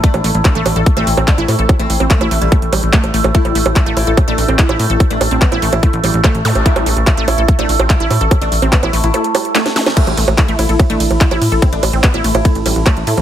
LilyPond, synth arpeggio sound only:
\new Staff \with { instrumentName = "Synth arpeggio sound" } { \time 4/4 \key c \major \tempo 4 = 145 a16 r16 a16 r16 a16 a16 r16 a'16 r16 a16 r16 c'16 r16 e'16 r16 a'16 | r16 a16 r16 c'16 r16 e'16 a16 r16 a16 r16 g16 r16 a16 r16 a16 r16 | a16 g16 a16 r16 a16 a16 r16 a'16 r16 a16 r16 c'16 r16 e'16 r16 a'16 | r16 a16 r16 c'16 r16 e'16 a16 r16 a16 r16 g16 r16 a16 r16 a16 r16 |
a16 g16 a16 r16 a16 a16 r16 a'16 r16 a16 r16 c'16 r16 e'16 r16 a'16 | r16 a16 r16 c'16 r16 e'16 a16 r16 a16 r16 g16 r16 a16 r16 a16 r16 | a16 g16 a16 r16 a16 a16 r16 a'16 r16 a16 r8. e'16 r16 a'16 | c'16 a16 r16 c'16 r16 e'16 a16 r16 a16 r16 g16 r16 a16 r16 a16 r16 | }